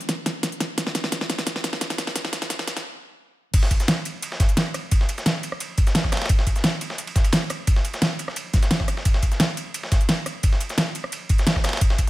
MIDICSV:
0, 0, Header, 1, 2, 480
1, 0, Start_track
1, 0, Tempo, 344828
1, 1084, Time_signature, 4, 2, 24, 8
1, 16842, End_track
2, 0, Start_track
2, 0, Title_t, "Drums"
2, 8, Note_on_c, 9, 42, 36
2, 122, Note_off_c, 9, 42, 0
2, 122, Note_on_c, 9, 38, 86
2, 122, Note_on_c, 9, 42, 90
2, 123, Note_on_c, 9, 36, 97
2, 261, Note_off_c, 9, 38, 0
2, 261, Note_off_c, 9, 42, 0
2, 262, Note_off_c, 9, 36, 0
2, 362, Note_on_c, 9, 38, 86
2, 362, Note_on_c, 9, 42, 65
2, 501, Note_off_c, 9, 38, 0
2, 501, Note_off_c, 9, 42, 0
2, 600, Note_on_c, 9, 38, 87
2, 600, Note_on_c, 9, 42, 90
2, 603, Note_on_c, 9, 36, 97
2, 727, Note_off_c, 9, 42, 0
2, 727, Note_on_c, 9, 42, 36
2, 739, Note_off_c, 9, 38, 0
2, 742, Note_off_c, 9, 36, 0
2, 841, Note_off_c, 9, 42, 0
2, 841, Note_on_c, 9, 38, 89
2, 841, Note_on_c, 9, 42, 65
2, 980, Note_off_c, 9, 38, 0
2, 980, Note_off_c, 9, 42, 0
2, 1082, Note_on_c, 9, 38, 93
2, 1082, Note_on_c, 9, 42, 96
2, 1083, Note_on_c, 9, 36, 93
2, 1205, Note_off_c, 9, 38, 0
2, 1205, Note_on_c, 9, 38, 79
2, 1221, Note_off_c, 9, 42, 0
2, 1222, Note_off_c, 9, 36, 0
2, 1321, Note_off_c, 9, 38, 0
2, 1321, Note_on_c, 9, 38, 90
2, 1321, Note_on_c, 9, 42, 68
2, 1445, Note_off_c, 9, 38, 0
2, 1445, Note_on_c, 9, 38, 84
2, 1460, Note_off_c, 9, 42, 0
2, 1560, Note_off_c, 9, 38, 0
2, 1560, Note_on_c, 9, 38, 90
2, 1560, Note_on_c, 9, 42, 93
2, 1563, Note_on_c, 9, 36, 96
2, 1687, Note_off_c, 9, 38, 0
2, 1687, Note_on_c, 9, 38, 82
2, 1699, Note_off_c, 9, 42, 0
2, 1702, Note_off_c, 9, 36, 0
2, 1803, Note_off_c, 9, 38, 0
2, 1803, Note_on_c, 9, 38, 93
2, 1803, Note_on_c, 9, 42, 67
2, 1928, Note_off_c, 9, 38, 0
2, 1928, Note_off_c, 9, 42, 0
2, 1928, Note_on_c, 9, 38, 83
2, 1928, Note_on_c, 9, 42, 38
2, 2041, Note_off_c, 9, 38, 0
2, 2041, Note_off_c, 9, 42, 0
2, 2041, Note_on_c, 9, 38, 94
2, 2041, Note_on_c, 9, 42, 93
2, 2043, Note_on_c, 9, 36, 98
2, 2168, Note_off_c, 9, 38, 0
2, 2168, Note_on_c, 9, 38, 82
2, 2180, Note_off_c, 9, 42, 0
2, 2182, Note_off_c, 9, 36, 0
2, 2283, Note_off_c, 9, 38, 0
2, 2283, Note_on_c, 9, 38, 96
2, 2283, Note_on_c, 9, 42, 66
2, 2407, Note_off_c, 9, 38, 0
2, 2407, Note_on_c, 9, 38, 86
2, 2422, Note_off_c, 9, 42, 0
2, 2522, Note_off_c, 9, 38, 0
2, 2522, Note_on_c, 9, 36, 94
2, 2522, Note_on_c, 9, 38, 100
2, 2522, Note_on_c, 9, 42, 98
2, 2648, Note_off_c, 9, 38, 0
2, 2648, Note_off_c, 9, 42, 0
2, 2648, Note_on_c, 9, 38, 86
2, 2648, Note_on_c, 9, 42, 38
2, 2661, Note_off_c, 9, 36, 0
2, 2761, Note_off_c, 9, 38, 0
2, 2761, Note_off_c, 9, 42, 0
2, 2761, Note_on_c, 9, 38, 100
2, 2761, Note_on_c, 9, 42, 67
2, 2885, Note_off_c, 9, 38, 0
2, 2885, Note_on_c, 9, 38, 91
2, 2900, Note_off_c, 9, 42, 0
2, 3001, Note_off_c, 9, 38, 0
2, 3001, Note_on_c, 9, 38, 105
2, 3001, Note_on_c, 9, 42, 103
2, 3002, Note_on_c, 9, 36, 95
2, 3126, Note_off_c, 9, 38, 0
2, 3126, Note_on_c, 9, 38, 90
2, 3140, Note_off_c, 9, 42, 0
2, 3141, Note_off_c, 9, 36, 0
2, 3241, Note_off_c, 9, 38, 0
2, 3241, Note_on_c, 9, 38, 102
2, 3241, Note_on_c, 9, 42, 69
2, 3367, Note_off_c, 9, 38, 0
2, 3367, Note_off_c, 9, 42, 0
2, 3367, Note_on_c, 9, 38, 93
2, 3367, Note_on_c, 9, 42, 40
2, 3481, Note_off_c, 9, 38, 0
2, 3481, Note_off_c, 9, 42, 0
2, 3481, Note_on_c, 9, 36, 98
2, 3481, Note_on_c, 9, 38, 100
2, 3481, Note_on_c, 9, 42, 93
2, 3608, Note_off_c, 9, 38, 0
2, 3608, Note_on_c, 9, 38, 94
2, 3620, Note_off_c, 9, 42, 0
2, 3621, Note_off_c, 9, 36, 0
2, 3724, Note_off_c, 9, 38, 0
2, 3724, Note_on_c, 9, 38, 100
2, 3724, Note_on_c, 9, 42, 67
2, 3850, Note_off_c, 9, 38, 0
2, 3850, Note_off_c, 9, 42, 0
2, 3850, Note_on_c, 9, 38, 91
2, 3850, Note_on_c, 9, 42, 39
2, 3989, Note_off_c, 9, 38, 0
2, 3989, Note_off_c, 9, 42, 0
2, 4922, Note_on_c, 9, 42, 102
2, 4922, Note_on_c, 9, 49, 107
2, 4923, Note_on_c, 9, 36, 114
2, 4925, Note_on_c, 9, 51, 88
2, 5049, Note_on_c, 9, 38, 55
2, 5061, Note_off_c, 9, 42, 0
2, 5061, Note_off_c, 9, 49, 0
2, 5062, Note_off_c, 9, 36, 0
2, 5064, Note_off_c, 9, 51, 0
2, 5162, Note_on_c, 9, 42, 67
2, 5163, Note_on_c, 9, 36, 63
2, 5164, Note_on_c, 9, 51, 66
2, 5188, Note_off_c, 9, 38, 0
2, 5288, Note_off_c, 9, 42, 0
2, 5288, Note_on_c, 9, 42, 38
2, 5292, Note_on_c, 9, 38, 38
2, 5302, Note_off_c, 9, 36, 0
2, 5303, Note_off_c, 9, 51, 0
2, 5403, Note_off_c, 9, 38, 0
2, 5403, Note_off_c, 9, 42, 0
2, 5403, Note_on_c, 9, 38, 117
2, 5403, Note_on_c, 9, 42, 90
2, 5403, Note_on_c, 9, 51, 86
2, 5542, Note_off_c, 9, 51, 0
2, 5543, Note_off_c, 9, 38, 0
2, 5543, Note_off_c, 9, 42, 0
2, 5643, Note_on_c, 9, 42, 67
2, 5648, Note_on_c, 9, 51, 67
2, 5782, Note_off_c, 9, 42, 0
2, 5787, Note_off_c, 9, 51, 0
2, 5880, Note_on_c, 9, 42, 98
2, 5886, Note_on_c, 9, 51, 84
2, 6012, Note_on_c, 9, 38, 50
2, 6020, Note_off_c, 9, 42, 0
2, 6025, Note_off_c, 9, 51, 0
2, 6123, Note_on_c, 9, 36, 110
2, 6123, Note_on_c, 9, 42, 66
2, 6127, Note_off_c, 9, 38, 0
2, 6127, Note_on_c, 9, 38, 54
2, 6127, Note_on_c, 9, 51, 69
2, 6247, Note_off_c, 9, 42, 0
2, 6247, Note_on_c, 9, 42, 38
2, 6262, Note_off_c, 9, 36, 0
2, 6266, Note_off_c, 9, 38, 0
2, 6266, Note_off_c, 9, 51, 0
2, 6361, Note_off_c, 9, 42, 0
2, 6361, Note_on_c, 9, 38, 118
2, 6361, Note_on_c, 9, 42, 99
2, 6365, Note_off_c, 9, 38, 0
2, 6365, Note_on_c, 9, 38, 121
2, 6365, Note_on_c, 9, 51, 87
2, 6500, Note_off_c, 9, 42, 0
2, 6504, Note_off_c, 9, 38, 0
2, 6504, Note_off_c, 9, 51, 0
2, 6602, Note_on_c, 9, 37, 55
2, 6602, Note_on_c, 9, 42, 66
2, 6607, Note_on_c, 9, 51, 70
2, 6742, Note_off_c, 9, 37, 0
2, 6742, Note_off_c, 9, 42, 0
2, 6746, Note_off_c, 9, 51, 0
2, 6841, Note_on_c, 9, 42, 97
2, 6844, Note_on_c, 9, 36, 119
2, 6845, Note_on_c, 9, 51, 89
2, 6972, Note_on_c, 9, 38, 45
2, 6980, Note_off_c, 9, 42, 0
2, 6983, Note_off_c, 9, 36, 0
2, 6984, Note_off_c, 9, 51, 0
2, 7083, Note_on_c, 9, 42, 67
2, 7087, Note_on_c, 9, 51, 68
2, 7111, Note_off_c, 9, 38, 0
2, 7208, Note_off_c, 9, 42, 0
2, 7208, Note_on_c, 9, 42, 38
2, 7211, Note_on_c, 9, 38, 50
2, 7226, Note_off_c, 9, 51, 0
2, 7321, Note_off_c, 9, 38, 0
2, 7321, Note_off_c, 9, 42, 0
2, 7321, Note_on_c, 9, 38, 117
2, 7321, Note_on_c, 9, 42, 92
2, 7326, Note_off_c, 9, 38, 0
2, 7326, Note_on_c, 9, 38, 117
2, 7326, Note_on_c, 9, 51, 84
2, 7461, Note_off_c, 9, 42, 0
2, 7465, Note_off_c, 9, 38, 0
2, 7465, Note_off_c, 9, 51, 0
2, 7561, Note_on_c, 9, 42, 67
2, 7566, Note_on_c, 9, 51, 71
2, 7686, Note_on_c, 9, 37, 58
2, 7701, Note_off_c, 9, 42, 0
2, 7705, Note_off_c, 9, 51, 0
2, 7800, Note_on_c, 9, 42, 93
2, 7804, Note_on_c, 9, 51, 86
2, 7825, Note_off_c, 9, 37, 0
2, 7940, Note_off_c, 9, 42, 0
2, 7943, Note_off_c, 9, 51, 0
2, 8040, Note_on_c, 9, 42, 67
2, 8044, Note_on_c, 9, 36, 114
2, 8047, Note_on_c, 9, 51, 71
2, 8166, Note_off_c, 9, 42, 0
2, 8166, Note_on_c, 9, 42, 37
2, 8172, Note_on_c, 9, 38, 49
2, 8183, Note_off_c, 9, 36, 0
2, 8186, Note_off_c, 9, 51, 0
2, 8281, Note_off_c, 9, 38, 0
2, 8281, Note_off_c, 9, 42, 0
2, 8281, Note_on_c, 9, 38, 122
2, 8281, Note_on_c, 9, 42, 95
2, 8285, Note_off_c, 9, 38, 0
2, 8285, Note_on_c, 9, 38, 117
2, 8285, Note_on_c, 9, 51, 88
2, 8405, Note_on_c, 9, 37, 37
2, 8409, Note_on_c, 9, 36, 63
2, 8413, Note_off_c, 9, 38, 0
2, 8413, Note_on_c, 9, 38, 53
2, 8420, Note_off_c, 9, 42, 0
2, 8425, Note_off_c, 9, 51, 0
2, 8521, Note_off_c, 9, 37, 0
2, 8521, Note_on_c, 9, 37, 57
2, 8521, Note_on_c, 9, 42, 67
2, 8528, Note_off_c, 9, 38, 0
2, 8528, Note_on_c, 9, 38, 89
2, 8528, Note_on_c, 9, 51, 69
2, 8548, Note_off_c, 9, 36, 0
2, 8590, Note_off_c, 9, 38, 0
2, 8590, Note_off_c, 9, 51, 0
2, 8590, Note_on_c, 9, 38, 92
2, 8590, Note_on_c, 9, 51, 68
2, 8653, Note_off_c, 9, 38, 0
2, 8653, Note_off_c, 9, 51, 0
2, 8653, Note_on_c, 9, 38, 86
2, 8653, Note_on_c, 9, 51, 64
2, 8660, Note_off_c, 9, 37, 0
2, 8660, Note_off_c, 9, 42, 0
2, 8708, Note_off_c, 9, 38, 0
2, 8708, Note_off_c, 9, 51, 0
2, 8708, Note_on_c, 9, 38, 84
2, 8708, Note_on_c, 9, 51, 65
2, 8761, Note_on_c, 9, 42, 93
2, 8763, Note_on_c, 9, 36, 126
2, 8766, Note_off_c, 9, 51, 0
2, 8766, Note_on_c, 9, 51, 88
2, 8848, Note_off_c, 9, 38, 0
2, 8891, Note_on_c, 9, 38, 56
2, 8900, Note_off_c, 9, 42, 0
2, 8902, Note_off_c, 9, 36, 0
2, 8905, Note_off_c, 9, 51, 0
2, 9002, Note_on_c, 9, 42, 64
2, 9003, Note_on_c, 9, 36, 67
2, 9005, Note_on_c, 9, 51, 66
2, 9030, Note_off_c, 9, 38, 0
2, 9126, Note_off_c, 9, 42, 0
2, 9126, Note_on_c, 9, 42, 37
2, 9131, Note_on_c, 9, 38, 39
2, 9142, Note_off_c, 9, 36, 0
2, 9144, Note_off_c, 9, 51, 0
2, 9241, Note_off_c, 9, 38, 0
2, 9241, Note_off_c, 9, 42, 0
2, 9241, Note_on_c, 9, 38, 121
2, 9241, Note_on_c, 9, 42, 86
2, 9243, Note_off_c, 9, 38, 0
2, 9243, Note_on_c, 9, 38, 117
2, 9243, Note_on_c, 9, 51, 87
2, 9380, Note_off_c, 9, 42, 0
2, 9382, Note_off_c, 9, 38, 0
2, 9382, Note_off_c, 9, 51, 0
2, 9480, Note_on_c, 9, 42, 61
2, 9482, Note_on_c, 9, 51, 79
2, 9606, Note_on_c, 9, 38, 51
2, 9620, Note_off_c, 9, 42, 0
2, 9621, Note_off_c, 9, 51, 0
2, 9720, Note_on_c, 9, 42, 87
2, 9722, Note_on_c, 9, 51, 60
2, 9745, Note_off_c, 9, 38, 0
2, 9847, Note_off_c, 9, 51, 0
2, 9847, Note_on_c, 9, 51, 77
2, 9859, Note_off_c, 9, 42, 0
2, 9961, Note_on_c, 9, 38, 51
2, 9963, Note_on_c, 9, 36, 111
2, 9963, Note_on_c, 9, 42, 64
2, 9986, Note_off_c, 9, 51, 0
2, 10084, Note_on_c, 9, 51, 62
2, 10087, Note_off_c, 9, 42, 0
2, 10087, Note_on_c, 9, 42, 37
2, 10101, Note_off_c, 9, 38, 0
2, 10102, Note_off_c, 9, 36, 0
2, 10198, Note_off_c, 9, 51, 0
2, 10198, Note_on_c, 9, 38, 116
2, 10198, Note_on_c, 9, 51, 89
2, 10203, Note_off_c, 9, 38, 0
2, 10203, Note_off_c, 9, 42, 0
2, 10203, Note_on_c, 9, 38, 127
2, 10203, Note_on_c, 9, 42, 91
2, 10337, Note_off_c, 9, 51, 0
2, 10342, Note_off_c, 9, 38, 0
2, 10342, Note_off_c, 9, 42, 0
2, 10437, Note_on_c, 9, 51, 71
2, 10442, Note_on_c, 9, 37, 57
2, 10442, Note_on_c, 9, 42, 64
2, 10577, Note_off_c, 9, 51, 0
2, 10581, Note_off_c, 9, 37, 0
2, 10581, Note_off_c, 9, 42, 0
2, 10680, Note_on_c, 9, 51, 87
2, 10682, Note_on_c, 9, 42, 88
2, 10684, Note_on_c, 9, 36, 121
2, 10807, Note_on_c, 9, 38, 46
2, 10819, Note_off_c, 9, 51, 0
2, 10821, Note_off_c, 9, 42, 0
2, 10823, Note_off_c, 9, 36, 0
2, 10922, Note_on_c, 9, 51, 67
2, 10923, Note_on_c, 9, 42, 62
2, 10946, Note_off_c, 9, 38, 0
2, 11046, Note_off_c, 9, 42, 0
2, 11046, Note_on_c, 9, 42, 36
2, 11051, Note_on_c, 9, 38, 52
2, 11061, Note_off_c, 9, 51, 0
2, 11161, Note_off_c, 9, 38, 0
2, 11161, Note_off_c, 9, 42, 0
2, 11161, Note_on_c, 9, 38, 122
2, 11161, Note_on_c, 9, 42, 88
2, 11164, Note_off_c, 9, 38, 0
2, 11164, Note_on_c, 9, 38, 114
2, 11164, Note_on_c, 9, 51, 90
2, 11300, Note_off_c, 9, 42, 0
2, 11303, Note_off_c, 9, 38, 0
2, 11303, Note_off_c, 9, 51, 0
2, 11403, Note_on_c, 9, 42, 62
2, 11406, Note_on_c, 9, 51, 61
2, 11525, Note_on_c, 9, 37, 54
2, 11531, Note_on_c, 9, 38, 35
2, 11542, Note_off_c, 9, 42, 0
2, 11545, Note_off_c, 9, 51, 0
2, 11640, Note_on_c, 9, 42, 89
2, 11645, Note_on_c, 9, 51, 88
2, 11665, Note_off_c, 9, 37, 0
2, 11670, Note_off_c, 9, 38, 0
2, 11780, Note_off_c, 9, 42, 0
2, 11784, Note_off_c, 9, 51, 0
2, 11881, Note_on_c, 9, 38, 39
2, 11881, Note_on_c, 9, 42, 62
2, 11884, Note_on_c, 9, 36, 107
2, 11884, Note_on_c, 9, 51, 70
2, 12006, Note_off_c, 9, 42, 0
2, 12006, Note_on_c, 9, 42, 36
2, 12009, Note_off_c, 9, 38, 0
2, 12009, Note_on_c, 9, 38, 50
2, 12023, Note_off_c, 9, 36, 0
2, 12023, Note_off_c, 9, 51, 0
2, 12120, Note_off_c, 9, 38, 0
2, 12120, Note_off_c, 9, 42, 0
2, 12120, Note_on_c, 9, 38, 125
2, 12120, Note_on_c, 9, 42, 90
2, 12123, Note_off_c, 9, 38, 0
2, 12123, Note_on_c, 9, 38, 117
2, 12123, Note_on_c, 9, 51, 88
2, 12247, Note_on_c, 9, 37, 35
2, 12248, Note_off_c, 9, 38, 0
2, 12248, Note_on_c, 9, 38, 53
2, 12249, Note_on_c, 9, 36, 65
2, 12260, Note_off_c, 9, 42, 0
2, 12262, Note_off_c, 9, 51, 0
2, 12361, Note_off_c, 9, 37, 0
2, 12361, Note_on_c, 9, 37, 55
2, 12361, Note_on_c, 9, 42, 63
2, 12366, Note_on_c, 9, 51, 69
2, 12387, Note_off_c, 9, 38, 0
2, 12389, Note_off_c, 9, 36, 0
2, 12490, Note_on_c, 9, 38, 50
2, 12500, Note_off_c, 9, 37, 0
2, 12500, Note_off_c, 9, 42, 0
2, 12505, Note_off_c, 9, 51, 0
2, 12602, Note_on_c, 9, 42, 88
2, 12603, Note_on_c, 9, 51, 90
2, 12604, Note_on_c, 9, 36, 115
2, 12629, Note_off_c, 9, 38, 0
2, 12727, Note_on_c, 9, 38, 54
2, 12741, Note_off_c, 9, 42, 0
2, 12742, Note_off_c, 9, 51, 0
2, 12743, Note_off_c, 9, 36, 0
2, 12842, Note_on_c, 9, 42, 61
2, 12844, Note_on_c, 9, 36, 63
2, 12844, Note_on_c, 9, 51, 68
2, 12866, Note_off_c, 9, 38, 0
2, 12967, Note_off_c, 9, 42, 0
2, 12967, Note_on_c, 9, 42, 36
2, 12969, Note_on_c, 9, 38, 38
2, 12983, Note_off_c, 9, 36, 0
2, 12983, Note_off_c, 9, 51, 0
2, 13082, Note_off_c, 9, 38, 0
2, 13082, Note_off_c, 9, 42, 0
2, 13082, Note_on_c, 9, 38, 115
2, 13082, Note_on_c, 9, 42, 89
2, 13083, Note_off_c, 9, 38, 0
2, 13083, Note_on_c, 9, 38, 116
2, 13083, Note_on_c, 9, 51, 86
2, 13222, Note_off_c, 9, 38, 0
2, 13222, Note_off_c, 9, 42, 0
2, 13222, Note_off_c, 9, 51, 0
2, 13323, Note_on_c, 9, 51, 71
2, 13325, Note_on_c, 9, 42, 62
2, 13462, Note_off_c, 9, 51, 0
2, 13464, Note_off_c, 9, 42, 0
2, 13563, Note_on_c, 9, 42, 86
2, 13563, Note_on_c, 9, 51, 87
2, 13689, Note_on_c, 9, 38, 51
2, 13702, Note_off_c, 9, 42, 0
2, 13702, Note_off_c, 9, 51, 0
2, 13804, Note_on_c, 9, 42, 61
2, 13805, Note_on_c, 9, 36, 107
2, 13806, Note_off_c, 9, 38, 0
2, 13806, Note_on_c, 9, 38, 55
2, 13806, Note_on_c, 9, 51, 70
2, 13929, Note_off_c, 9, 42, 0
2, 13929, Note_on_c, 9, 42, 36
2, 13944, Note_off_c, 9, 36, 0
2, 13945, Note_off_c, 9, 38, 0
2, 13945, Note_off_c, 9, 51, 0
2, 14042, Note_off_c, 9, 42, 0
2, 14042, Note_on_c, 9, 38, 120
2, 14042, Note_on_c, 9, 42, 92
2, 14046, Note_off_c, 9, 38, 0
2, 14046, Note_on_c, 9, 38, 119
2, 14046, Note_on_c, 9, 51, 90
2, 14181, Note_off_c, 9, 42, 0
2, 14185, Note_off_c, 9, 38, 0
2, 14185, Note_off_c, 9, 51, 0
2, 14282, Note_on_c, 9, 37, 53
2, 14282, Note_on_c, 9, 42, 64
2, 14285, Note_on_c, 9, 51, 71
2, 14421, Note_off_c, 9, 37, 0
2, 14421, Note_off_c, 9, 42, 0
2, 14424, Note_off_c, 9, 51, 0
2, 14521, Note_on_c, 9, 42, 94
2, 14526, Note_on_c, 9, 36, 112
2, 14527, Note_on_c, 9, 51, 88
2, 14652, Note_on_c, 9, 38, 45
2, 14661, Note_off_c, 9, 42, 0
2, 14665, Note_off_c, 9, 36, 0
2, 14667, Note_off_c, 9, 51, 0
2, 14762, Note_on_c, 9, 42, 65
2, 14768, Note_on_c, 9, 51, 68
2, 14791, Note_off_c, 9, 38, 0
2, 14885, Note_off_c, 9, 42, 0
2, 14885, Note_on_c, 9, 42, 37
2, 14897, Note_on_c, 9, 38, 51
2, 14907, Note_off_c, 9, 51, 0
2, 15001, Note_off_c, 9, 38, 0
2, 15001, Note_off_c, 9, 42, 0
2, 15001, Note_on_c, 9, 38, 113
2, 15001, Note_on_c, 9, 42, 89
2, 15008, Note_off_c, 9, 38, 0
2, 15008, Note_on_c, 9, 38, 114
2, 15008, Note_on_c, 9, 51, 87
2, 15140, Note_off_c, 9, 42, 0
2, 15147, Note_off_c, 9, 38, 0
2, 15147, Note_off_c, 9, 51, 0
2, 15242, Note_on_c, 9, 42, 64
2, 15250, Note_on_c, 9, 51, 68
2, 15367, Note_on_c, 9, 37, 54
2, 15381, Note_off_c, 9, 42, 0
2, 15389, Note_off_c, 9, 51, 0
2, 15481, Note_on_c, 9, 42, 88
2, 15489, Note_on_c, 9, 51, 85
2, 15506, Note_off_c, 9, 37, 0
2, 15620, Note_off_c, 9, 42, 0
2, 15628, Note_off_c, 9, 51, 0
2, 15721, Note_on_c, 9, 42, 64
2, 15724, Note_on_c, 9, 36, 104
2, 15731, Note_on_c, 9, 51, 71
2, 15847, Note_off_c, 9, 42, 0
2, 15847, Note_on_c, 9, 42, 37
2, 15858, Note_on_c, 9, 38, 52
2, 15864, Note_off_c, 9, 36, 0
2, 15870, Note_off_c, 9, 51, 0
2, 15961, Note_off_c, 9, 38, 0
2, 15961, Note_off_c, 9, 42, 0
2, 15961, Note_on_c, 9, 38, 116
2, 15961, Note_on_c, 9, 42, 93
2, 15969, Note_off_c, 9, 38, 0
2, 15969, Note_on_c, 9, 38, 120
2, 15969, Note_on_c, 9, 51, 87
2, 16087, Note_on_c, 9, 37, 34
2, 16089, Note_on_c, 9, 36, 61
2, 16096, Note_off_c, 9, 38, 0
2, 16096, Note_on_c, 9, 38, 54
2, 16100, Note_off_c, 9, 42, 0
2, 16108, Note_off_c, 9, 51, 0
2, 16202, Note_off_c, 9, 37, 0
2, 16202, Note_on_c, 9, 37, 54
2, 16202, Note_on_c, 9, 42, 65
2, 16211, Note_off_c, 9, 38, 0
2, 16211, Note_on_c, 9, 38, 91
2, 16211, Note_on_c, 9, 51, 67
2, 16229, Note_off_c, 9, 36, 0
2, 16271, Note_off_c, 9, 38, 0
2, 16271, Note_off_c, 9, 51, 0
2, 16271, Note_on_c, 9, 38, 88
2, 16271, Note_on_c, 9, 51, 68
2, 16331, Note_off_c, 9, 38, 0
2, 16331, Note_off_c, 9, 51, 0
2, 16331, Note_on_c, 9, 38, 86
2, 16331, Note_on_c, 9, 51, 66
2, 16341, Note_off_c, 9, 37, 0
2, 16341, Note_off_c, 9, 42, 0
2, 16387, Note_off_c, 9, 38, 0
2, 16387, Note_off_c, 9, 51, 0
2, 16387, Note_on_c, 9, 38, 89
2, 16387, Note_on_c, 9, 51, 66
2, 16444, Note_on_c, 9, 36, 113
2, 16444, Note_on_c, 9, 42, 98
2, 16445, Note_off_c, 9, 51, 0
2, 16445, Note_on_c, 9, 51, 87
2, 16526, Note_off_c, 9, 38, 0
2, 16569, Note_on_c, 9, 38, 57
2, 16583, Note_off_c, 9, 36, 0
2, 16583, Note_off_c, 9, 42, 0
2, 16584, Note_off_c, 9, 51, 0
2, 16682, Note_on_c, 9, 42, 68
2, 16683, Note_on_c, 9, 36, 60
2, 16685, Note_on_c, 9, 51, 66
2, 16708, Note_off_c, 9, 38, 0
2, 16821, Note_off_c, 9, 42, 0
2, 16822, Note_off_c, 9, 36, 0
2, 16824, Note_off_c, 9, 51, 0
2, 16842, End_track
0, 0, End_of_file